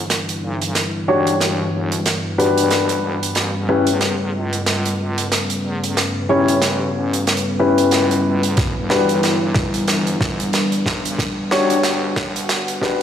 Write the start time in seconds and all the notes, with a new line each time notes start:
Already playing: G3 D4 E4 B4
0.10 snare, closed hi-hat
0.29 closed hi-hat
0.43 B1
0.62 closed hi-hat
0.75 snare, closed hi-hat
1.08 E1 D4 F#4 G4 C#5
1.27 closed hi-hat
1.41 snare, closed hi-hat
1.92 closed hi-hat
2.06 snare, closed hi-hat
2.38 E2 D4 F#4 G4 B4, closed hi-hat
2.57 E1, closed hi-hat
2.71 snare, closed hi-hat
2.89 closed hi-hat
3.23 closed hi-hat
3.35 A1 G3 C#4 A4, snare, closed hi-hat
3.69 C#4 E4 G4 B4
3.87 E2, closed hi-hat
4.01 snare, closed hi-hat
4.34 C#2
4.53 closed hi-hat
4.66 snare, closed hi-hat
4.86 closed hi-hat
5.18 closed hi-hat
5.32 snare, closed hi-hat
5.50 closed hi-hat
5.64 E2
5.84 closed hi-hat
5.97 snare, closed hi-hat
6.29 A1 C#4 E4 G4 C#5
6.48 closed hi-hat
6.62 snare, closed hi-hat
7.13 closed hi-hat
7.27 snare, closed hi-hat
7.37 closed hi-hat
7.59 C#4 E4 G4 B4
7.78 closed hi-hat
7.91 C#2, snare, closed hi-hat
8.11 closed hi-hat
8.43 E2, closed hi-hat
8.57 E1 D4 E4, kick, snare, closed hi-hat
8.90 D4 F#4 G4 B4, snare
9.09 B1, closed hi-hat
9.23 snare, closed hi-hat
9.54 G1, kick, snare
9.74 closed hi-hat
9.88 snare, closed hi-hat
10.07 closed hi-hat
10.21 kick, snare
10.40 closed hi-hat
10.53 snare, closed hi-hat
10.72 closed hi-hat
10.86 B1, kick, snare
11.05 closed hi-hat
11.19 F#5, kick, snare, closed hi-hat
11.51 E1 D4 F#4 G4 C#5, snare
11.70 closed hi-hat
11.83 snare, closed hi-hat
12.16 kick, snare
12.36 closed hi-hat
12.49 snare, closed hi-hat
12.68 closed hi-hat
12.82 E2 D4 F#4 G4 B4, kick, snare